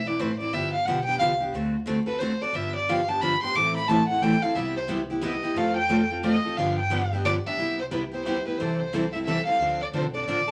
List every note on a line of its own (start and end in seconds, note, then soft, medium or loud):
0.00 0.13 B1 medium
0.06 0.18 C4 soft
0.06 0.19 E4 medium
0.06 0.18 B4 medium
0.06 0.21 D5 medium
0.19 0.48 A1 medium
0.19 0.30 E3 medium
0.19 0.30 A3 medium
0.19 0.30 C4 medium
0.19 0.31 E4 medium
0.19 0.31 B4 medium
0.19 0.39 C5 medium
0.39 0.53 C4 soft
0.39 0.53 E4 soft
0.39 0.52 B4 medium
0.39 0.55 D5 medium
0.52 0.79 G1 medium
0.52 0.73 D3 medium
0.52 0.74 F3 medium
0.52 0.74 B3 medium
0.52 0.74 D4 medium
0.52 0.74 G4 medium
0.52 0.73 E5 medium
0.73 0.87 F5 medium
0.85 1.14 B1 medium
0.85 0.98 D3 medium
0.85 0.98 F3 medium
0.85 0.98 B3 medium
0.85 0.98 D4 medium
0.85 0.98 G4 medium
0.85 1.04 F#5 medium
1.05 1.20 D4 medium
1.05 1.19 G4 soft
1.05 1.18 G5 medium
1.09 1.19 B3 soft
1.18 1.47 C2 medium
1.18 1.31 D3 medium
1.18 1.31 F3 medium
1.18 1.31 B3 medium
1.18 1.31 D4 medium
1.18 1.32 G4 loud
1.18 1.32 F5 medium
1.40 1.54 B3 soft
1.40 1.53 D4 medium
1.40 1.53 G4 medium
1.52 2.33 D2 medium
1.52 1.74 D3 medium
1.52 1.75 A3 medium
1.52 1.75 C4 medium
1.52 1.75 F#4 medium
1.52 1.75 A4 medium
1.86 1.97 D3 medium
1.86 1.98 A3 loud
1.86 1.98 C4 medium
1.86 1.98 F#4 medium
1.86 1.98 A4 medium
2.06 2.20 C4 soft
2.06 2.20 F#4 soft
2.06 2.19 A4 medium
2.06 2.20 B4 medium
2.19 2.31 D3 medium
2.19 2.31 A3 medium
2.19 2.32 C4 medium
2.19 2.32 F#4 medium
2.19 2.32 A4 loud
2.19 2.43 C5 medium
2.41 2.54 C4 medium
2.41 2.54 F#4 medium
2.41 2.53 A4 medium
2.41 2.57 D5 medium
2.53 3.34 G1 medium
2.53 2.75 D3 medium
2.53 2.75 F3 medium
2.53 2.75 B3 medium
2.53 2.75 D4 medium
2.53 2.75 G4 medium
2.53 2.75 E5 medium
2.76 2.91 D5 medium
2.89 2.99 D3 medium
2.89 2.99 F3 medium
2.89 3.00 B3 medium
2.89 2.99 D4 medium
2.89 3.00 G4 loud
2.89 3.10 F5 medium
3.08 3.22 B3 soft
3.08 3.21 D4 soft
3.08 3.20 G4 medium
3.08 3.23 A5 medium
3.22 3.32 D3 medium
3.22 3.33 F3 medium
3.22 3.33 B3 medium
3.22 3.33 D4 medium
3.22 3.33 G4 medium
3.22 3.42 B5 medium
3.43 3.55 B3 soft
3.43 3.55 D4 soft
3.43 3.54 G4 medium
3.43 3.57 C6 loud
3.54 4.35 A1 medium
3.54 3.76 E3 medium
3.54 3.76 A3 medium
3.54 3.76 C4 medium
3.54 3.76 E4 medium
3.54 3.76 A4 medium
3.54 3.75 D6 loud
3.76 3.90 B5 medium
3.88 4.00 E3 medium
3.88 4.00 A3 medium
3.88 4.00 C4 medium
3.88 4.00 E4 loud
3.88 4.00 A4 medium
3.88 4.07 A5 medium
4.08 4.22 E4 soft
4.08 4.22 A4 medium
4.08 4.24 F#5 medium
4.12 4.22 C4 soft
4.22 4.33 E3 medium
4.22 4.33 A3 medium
4.22 4.34 C4 medium
4.22 4.34 E4 medium
4.22 4.34 A4 medium
4.22 4.43 G5 loud
4.42 4.56 C4 soft
4.42 4.55 E4 medium
4.42 4.55 A4 medium
4.42 4.56 F5 medium
4.55 5.35 C2 medium
4.55 4.76 C3 medium
4.55 4.76 G3 medium
4.55 4.77 B3 medium
4.55 4.77 E4 medium
4.55 4.77 G4 medium
4.55 4.76 E5 medium
4.77 4.84 C5 medium
4.88 5.00 C3 loud
4.88 5.00 G3 medium
4.88 5.00 B3 medium
4.88 5.00 E4 loud
4.88 5.00 G4 medium
5.10 5.21 B3 soft
5.10 5.21 E4 medium
5.10 5.22 G4 medium
5.21 5.33 C3 medium
5.21 5.33 G3 medium
5.21 5.33 B3 medium
5.21 5.34 E4 loud
5.21 5.34 G4 loud
5.21 5.59 D#5 medium
5.43 5.56 B3 medium
5.43 5.56 E4 medium
5.43 5.55 G4 medium
5.54 6.36 F2 medium
5.54 5.77 F3 medium
5.54 5.77 A3 medium
5.54 5.77 C4 medium
5.54 5.77 F4 medium
5.54 5.77 A4 medium
5.54 5.76 F5 medium
5.77 6.08 G5 medium
5.89 6.00 F3 medium
5.89 6.01 A3 loud
5.89 6.00 C4 medium
5.89 6.01 F4 medium
5.89 6.01 A4 medium
6.11 6.23 C4 soft
6.11 6.23 F4 medium
6.11 6.23 A4 medium
6.23 6.34 F3 medium
6.23 6.34 A3 medium
6.23 6.35 C4 medium
6.23 6.34 F4 medium
6.23 6.35 A4 medium
6.23 6.59 D#5 medium
6.45 6.58 C4 medium
6.45 6.57 F4 soft
6.45 6.57 A4 medium
6.55 7.36 G2 loud
6.55 6.78 D3 medium
6.55 6.78 F3 medium
6.55 6.79 B3 medium
6.55 6.79 D4 medium
6.55 6.78 F5 medium
6.60 6.79 G4 medium
6.79 7.09 G5 medium
6.90 7.01 D3 medium
6.90 7.02 F3 medium
6.90 7.02 B3 loud
6.90 7.02 D4 loud
6.90 7.02 G4 medium
7.13 7.25 B3 soft
7.13 7.25 D4 medium
7.13 7.24 G4 medium
7.25 7.35 D3 medium
7.25 7.36 F3 medium
7.25 7.36 B3 medium
7.25 7.36 D4 medium
7.25 7.36 G4 loud
7.25 7.34 D5 loud
7.46 7.58 B3 soft
7.46 7.58 D4 medium
7.46 7.58 G4 medium
7.46 7.77 E5 medium
7.56 8.37 C2 medium
7.56 7.79 C3 medium
7.56 7.79 G3 medium
7.56 7.79 B3 medium
7.56 7.79 E4 medium
7.56 7.79 G4 medium
7.80 7.86 C5 medium
7.91 8.02 C3 medium
7.91 8.02 G3 medium
7.91 8.03 B3 medium
7.91 8.03 E4 medium
7.91 8.03 G4 medium
7.91 8.01 B4 medium
8.11 8.25 B3 soft
8.11 8.25 E4 soft
8.11 8.24 G4 soft
8.11 8.25 C5 medium
8.25 8.36 C3 medium
8.25 8.36 G3 medium
8.25 8.37 B3 medium
8.25 8.36 E4 medium
8.25 8.37 G4 medium
8.25 8.45 C5 medium
8.46 8.59 B3 soft
8.46 8.58 E4 soft
8.46 8.58 G4 medium
8.46 8.59 B4 medium
8.57 9.38 C2 medium
8.57 8.80 C3 medium
8.57 8.80 E3 medium
8.57 8.80 G3 medium
8.57 8.80 C4 medium
8.57 8.80 E4 medium
8.57 8.80 A4 medium
8.57 8.77 C5 medium
8.78 9.09 C5 medium
8.93 9.03 C3 medium
8.93 9.04 E3 medium
8.93 9.03 G3 medium
8.93 9.04 C4 medium
8.93 9.04 E4 medium
8.93 9.04 A4 medium
9.13 9.26 G3 soft
9.13 9.26 C4 soft
9.13 9.26 E4 soft
9.13 9.25 A4 medium
9.13 9.18 E5 medium
9.26 9.37 C3 medium
9.26 9.37 E3 medium
9.26 9.38 G3 medium
9.26 9.38 C4 medium
9.26 9.38 E4 medium
9.26 9.38 A4 medium
9.26 9.45 E5 medium
9.46 9.60 G3 soft
9.46 9.59 C4 soft
9.46 9.59 E4 soft
9.46 9.59 A4 soft
9.46 9.77 F5 medium
9.58 9.85 D2 medium
9.58 9.81 D3 medium
9.58 9.81 F3 medium
9.58 9.81 C4 medium
9.58 9.81 D4 medium
9.62 9.81 A4 medium
9.82 9.87 D5 medium
9.92 10.21 B1 medium
9.92 10.04 D3 medium
9.92 10.04 F3 medium
9.92 10.04 C4 medium
9.92 10.04 D4 medium
9.92 10.04 A4 medium
9.97 10.05 C5 medium
10.14 10.27 C4 soft
10.14 10.26 D4 soft
10.14 10.26 A4 medium
10.14 10.25 D5 medium
10.25 10.51 A1 medium
10.25 10.38 D3 medium
10.25 10.38 F3 medium
10.25 10.38 D4 medium
10.25 10.50 D5 medium
10.29 10.38 C4 medium
10.29 10.39 A4 medium
10.47 10.51 D4 soft
10.47 10.51 A4 medium